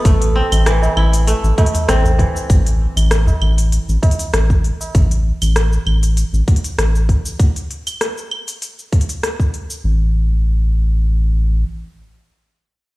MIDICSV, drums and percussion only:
0, 0, Header, 1, 3, 480
1, 0, Start_track
1, 0, Key_signature, 0, "minor"
1, 0, Tempo, 612245
1, 38, Time_signature, 4, 2, 24, 8
1, 10163, End_track
2, 0, Start_track
2, 0, Title_t, "Tabla"
2, 414, Note_on_c, 9, 63, 58
2, 492, Note_off_c, 9, 63, 0
2, 647, Note_on_c, 9, 63, 77
2, 648, Note_on_c, 9, 60, 67
2, 725, Note_off_c, 9, 63, 0
2, 727, Note_off_c, 9, 60, 0
2, 1239, Note_on_c, 9, 60, 87
2, 1318, Note_off_c, 9, 60, 0
2, 1370, Note_on_c, 9, 64, 94
2, 1448, Note_off_c, 9, 64, 0
2, 1604, Note_on_c, 9, 64, 82
2, 1682, Note_off_c, 9, 64, 0
2, 1715, Note_on_c, 9, 64, 79
2, 1793, Note_off_c, 9, 64, 0
2, 2323, Note_on_c, 9, 63, 50
2, 2401, Note_off_c, 9, 63, 0
2, 2562, Note_on_c, 9, 64, 106
2, 2566, Note_on_c, 9, 60, 63
2, 2568, Note_on_c, 9, 63, 66
2, 2641, Note_off_c, 9, 64, 0
2, 2644, Note_off_c, 9, 60, 0
2, 2646, Note_off_c, 9, 63, 0
2, 3156, Note_on_c, 9, 60, 77
2, 3163, Note_on_c, 9, 63, 66
2, 3234, Note_off_c, 9, 60, 0
2, 3241, Note_off_c, 9, 63, 0
2, 3286, Note_on_c, 9, 64, 98
2, 3364, Note_off_c, 9, 64, 0
2, 3768, Note_on_c, 9, 60, 54
2, 3768, Note_on_c, 9, 63, 32
2, 3847, Note_off_c, 9, 60, 0
2, 3847, Note_off_c, 9, 63, 0
2, 10163, End_track
3, 0, Start_track
3, 0, Title_t, "Drums"
3, 39, Note_on_c, 9, 36, 112
3, 40, Note_on_c, 9, 46, 53
3, 42, Note_on_c, 9, 82, 53
3, 117, Note_off_c, 9, 36, 0
3, 119, Note_off_c, 9, 46, 0
3, 121, Note_off_c, 9, 82, 0
3, 169, Note_on_c, 9, 46, 46
3, 171, Note_on_c, 9, 82, 31
3, 248, Note_off_c, 9, 46, 0
3, 250, Note_off_c, 9, 82, 0
3, 409, Note_on_c, 9, 46, 45
3, 409, Note_on_c, 9, 75, 78
3, 411, Note_on_c, 9, 82, 63
3, 488, Note_off_c, 9, 46, 0
3, 488, Note_off_c, 9, 75, 0
3, 490, Note_off_c, 9, 82, 0
3, 521, Note_on_c, 9, 37, 109
3, 521, Note_on_c, 9, 46, 56
3, 522, Note_on_c, 9, 82, 57
3, 599, Note_off_c, 9, 37, 0
3, 599, Note_off_c, 9, 46, 0
3, 601, Note_off_c, 9, 82, 0
3, 652, Note_on_c, 9, 82, 34
3, 730, Note_off_c, 9, 82, 0
3, 760, Note_on_c, 9, 75, 72
3, 839, Note_off_c, 9, 75, 0
3, 889, Note_on_c, 9, 46, 46
3, 891, Note_on_c, 9, 82, 64
3, 968, Note_off_c, 9, 46, 0
3, 970, Note_off_c, 9, 82, 0
3, 1000, Note_on_c, 9, 46, 56
3, 1002, Note_on_c, 9, 82, 51
3, 1078, Note_off_c, 9, 46, 0
3, 1080, Note_off_c, 9, 82, 0
3, 1131, Note_on_c, 9, 82, 30
3, 1209, Note_off_c, 9, 82, 0
3, 1238, Note_on_c, 9, 36, 89
3, 1240, Note_on_c, 9, 46, 40
3, 1304, Note_off_c, 9, 46, 0
3, 1304, Note_on_c, 9, 46, 59
3, 1317, Note_off_c, 9, 36, 0
3, 1369, Note_off_c, 9, 46, 0
3, 1369, Note_on_c, 9, 46, 47
3, 1371, Note_on_c, 9, 82, 65
3, 1448, Note_off_c, 9, 46, 0
3, 1450, Note_off_c, 9, 82, 0
3, 1479, Note_on_c, 9, 37, 104
3, 1479, Note_on_c, 9, 46, 57
3, 1481, Note_on_c, 9, 82, 55
3, 1557, Note_off_c, 9, 37, 0
3, 1557, Note_off_c, 9, 46, 0
3, 1559, Note_off_c, 9, 82, 0
3, 1611, Note_on_c, 9, 82, 31
3, 1689, Note_off_c, 9, 82, 0
3, 1718, Note_on_c, 9, 36, 55
3, 1720, Note_on_c, 9, 46, 29
3, 1797, Note_off_c, 9, 36, 0
3, 1799, Note_off_c, 9, 46, 0
3, 1852, Note_on_c, 9, 82, 67
3, 1931, Note_off_c, 9, 82, 0
3, 1958, Note_on_c, 9, 36, 114
3, 1960, Note_on_c, 9, 46, 53
3, 1962, Note_on_c, 9, 82, 54
3, 2037, Note_off_c, 9, 36, 0
3, 2039, Note_off_c, 9, 46, 0
3, 2041, Note_off_c, 9, 82, 0
3, 2090, Note_on_c, 9, 46, 44
3, 2091, Note_on_c, 9, 82, 32
3, 2168, Note_off_c, 9, 46, 0
3, 2170, Note_off_c, 9, 82, 0
3, 2329, Note_on_c, 9, 46, 45
3, 2329, Note_on_c, 9, 75, 72
3, 2331, Note_on_c, 9, 82, 67
3, 2408, Note_off_c, 9, 46, 0
3, 2408, Note_off_c, 9, 75, 0
3, 2410, Note_off_c, 9, 82, 0
3, 2438, Note_on_c, 9, 37, 101
3, 2438, Note_on_c, 9, 46, 56
3, 2440, Note_on_c, 9, 82, 56
3, 2517, Note_off_c, 9, 37, 0
3, 2517, Note_off_c, 9, 46, 0
3, 2519, Note_off_c, 9, 82, 0
3, 2569, Note_on_c, 9, 82, 31
3, 2647, Note_off_c, 9, 82, 0
3, 2678, Note_on_c, 9, 75, 67
3, 2757, Note_off_c, 9, 75, 0
3, 2808, Note_on_c, 9, 46, 43
3, 2809, Note_on_c, 9, 82, 62
3, 2886, Note_off_c, 9, 46, 0
3, 2888, Note_off_c, 9, 82, 0
3, 2919, Note_on_c, 9, 46, 49
3, 2921, Note_on_c, 9, 82, 51
3, 2998, Note_off_c, 9, 46, 0
3, 3000, Note_off_c, 9, 82, 0
3, 3050, Note_on_c, 9, 82, 29
3, 3129, Note_off_c, 9, 82, 0
3, 3158, Note_on_c, 9, 36, 92
3, 3160, Note_on_c, 9, 46, 40
3, 3224, Note_off_c, 9, 46, 0
3, 3224, Note_on_c, 9, 46, 54
3, 3237, Note_off_c, 9, 36, 0
3, 3288, Note_off_c, 9, 46, 0
3, 3288, Note_on_c, 9, 46, 43
3, 3290, Note_on_c, 9, 82, 66
3, 3366, Note_off_c, 9, 46, 0
3, 3368, Note_off_c, 9, 82, 0
3, 3399, Note_on_c, 9, 37, 100
3, 3399, Note_on_c, 9, 46, 51
3, 3401, Note_on_c, 9, 82, 54
3, 3477, Note_off_c, 9, 37, 0
3, 3477, Note_off_c, 9, 46, 0
3, 3479, Note_off_c, 9, 82, 0
3, 3528, Note_on_c, 9, 36, 63
3, 3530, Note_on_c, 9, 82, 32
3, 3606, Note_off_c, 9, 36, 0
3, 3608, Note_off_c, 9, 82, 0
3, 3640, Note_on_c, 9, 46, 28
3, 3719, Note_off_c, 9, 46, 0
3, 3772, Note_on_c, 9, 82, 67
3, 3850, Note_off_c, 9, 82, 0
3, 3879, Note_on_c, 9, 36, 121
3, 3880, Note_on_c, 9, 46, 51
3, 3882, Note_on_c, 9, 82, 52
3, 3957, Note_off_c, 9, 36, 0
3, 3958, Note_off_c, 9, 46, 0
3, 3960, Note_off_c, 9, 82, 0
3, 4008, Note_on_c, 9, 46, 40
3, 4010, Note_on_c, 9, 82, 33
3, 4086, Note_off_c, 9, 46, 0
3, 4088, Note_off_c, 9, 82, 0
3, 4248, Note_on_c, 9, 46, 43
3, 4248, Note_on_c, 9, 75, 67
3, 4250, Note_on_c, 9, 82, 65
3, 4327, Note_off_c, 9, 46, 0
3, 4327, Note_off_c, 9, 75, 0
3, 4328, Note_off_c, 9, 82, 0
3, 4359, Note_on_c, 9, 37, 96
3, 4359, Note_on_c, 9, 46, 48
3, 4361, Note_on_c, 9, 82, 57
3, 4437, Note_off_c, 9, 37, 0
3, 4437, Note_off_c, 9, 46, 0
3, 4439, Note_off_c, 9, 82, 0
3, 4490, Note_on_c, 9, 82, 34
3, 4568, Note_off_c, 9, 82, 0
3, 4599, Note_on_c, 9, 75, 67
3, 4678, Note_off_c, 9, 75, 0
3, 4727, Note_on_c, 9, 46, 38
3, 4729, Note_on_c, 9, 82, 65
3, 4805, Note_off_c, 9, 46, 0
3, 4807, Note_off_c, 9, 82, 0
3, 4838, Note_on_c, 9, 46, 47
3, 4840, Note_on_c, 9, 82, 55
3, 4916, Note_off_c, 9, 46, 0
3, 4918, Note_off_c, 9, 82, 0
3, 4971, Note_on_c, 9, 82, 32
3, 5050, Note_off_c, 9, 82, 0
3, 5078, Note_on_c, 9, 36, 91
3, 5079, Note_on_c, 9, 46, 36
3, 5145, Note_off_c, 9, 46, 0
3, 5145, Note_on_c, 9, 46, 48
3, 5157, Note_off_c, 9, 36, 0
3, 5209, Note_off_c, 9, 46, 0
3, 5209, Note_on_c, 9, 46, 43
3, 5211, Note_on_c, 9, 82, 66
3, 5287, Note_off_c, 9, 46, 0
3, 5289, Note_off_c, 9, 82, 0
3, 5320, Note_on_c, 9, 37, 95
3, 5320, Note_on_c, 9, 46, 51
3, 5322, Note_on_c, 9, 82, 57
3, 5398, Note_off_c, 9, 37, 0
3, 5398, Note_off_c, 9, 46, 0
3, 5400, Note_off_c, 9, 82, 0
3, 5451, Note_on_c, 9, 82, 32
3, 5530, Note_off_c, 9, 82, 0
3, 5558, Note_on_c, 9, 36, 57
3, 5560, Note_on_c, 9, 46, 27
3, 5637, Note_off_c, 9, 36, 0
3, 5639, Note_off_c, 9, 46, 0
3, 5689, Note_on_c, 9, 82, 70
3, 5767, Note_off_c, 9, 82, 0
3, 5798, Note_on_c, 9, 36, 109
3, 5799, Note_on_c, 9, 46, 51
3, 5801, Note_on_c, 9, 82, 51
3, 5876, Note_off_c, 9, 36, 0
3, 5877, Note_off_c, 9, 46, 0
3, 5879, Note_off_c, 9, 82, 0
3, 5929, Note_on_c, 9, 46, 39
3, 5930, Note_on_c, 9, 82, 32
3, 6007, Note_off_c, 9, 46, 0
3, 6009, Note_off_c, 9, 82, 0
3, 6041, Note_on_c, 9, 46, 28
3, 6119, Note_off_c, 9, 46, 0
3, 6169, Note_on_c, 9, 46, 39
3, 6169, Note_on_c, 9, 75, 67
3, 6171, Note_on_c, 9, 82, 62
3, 6247, Note_off_c, 9, 46, 0
3, 6247, Note_off_c, 9, 75, 0
3, 6249, Note_off_c, 9, 82, 0
3, 6280, Note_on_c, 9, 37, 93
3, 6280, Note_on_c, 9, 46, 51
3, 6282, Note_on_c, 9, 82, 54
3, 6358, Note_off_c, 9, 37, 0
3, 6358, Note_off_c, 9, 46, 0
3, 6360, Note_off_c, 9, 82, 0
3, 6411, Note_on_c, 9, 82, 31
3, 6489, Note_off_c, 9, 82, 0
3, 6518, Note_on_c, 9, 75, 65
3, 6596, Note_off_c, 9, 75, 0
3, 6647, Note_on_c, 9, 46, 36
3, 6649, Note_on_c, 9, 82, 64
3, 6725, Note_off_c, 9, 46, 0
3, 6727, Note_off_c, 9, 82, 0
3, 6758, Note_on_c, 9, 46, 45
3, 6760, Note_on_c, 9, 82, 49
3, 6837, Note_off_c, 9, 46, 0
3, 6839, Note_off_c, 9, 82, 0
3, 6891, Note_on_c, 9, 82, 32
3, 6969, Note_off_c, 9, 82, 0
3, 6997, Note_on_c, 9, 36, 86
3, 6999, Note_on_c, 9, 46, 36
3, 7064, Note_off_c, 9, 46, 0
3, 7064, Note_on_c, 9, 46, 46
3, 7076, Note_off_c, 9, 36, 0
3, 7128, Note_off_c, 9, 46, 0
3, 7128, Note_on_c, 9, 46, 40
3, 7130, Note_on_c, 9, 82, 66
3, 7206, Note_off_c, 9, 46, 0
3, 7208, Note_off_c, 9, 82, 0
3, 7239, Note_on_c, 9, 37, 85
3, 7239, Note_on_c, 9, 46, 47
3, 7241, Note_on_c, 9, 82, 50
3, 7318, Note_off_c, 9, 37, 0
3, 7318, Note_off_c, 9, 46, 0
3, 7320, Note_off_c, 9, 82, 0
3, 7366, Note_on_c, 9, 36, 58
3, 7371, Note_on_c, 9, 82, 28
3, 7445, Note_off_c, 9, 36, 0
3, 7449, Note_off_c, 9, 82, 0
3, 7478, Note_on_c, 9, 46, 25
3, 7556, Note_off_c, 9, 46, 0
3, 7607, Note_on_c, 9, 82, 62
3, 7686, Note_off_c, 9, 82, 0
3, 10163, End_track
0, 0, End_of_file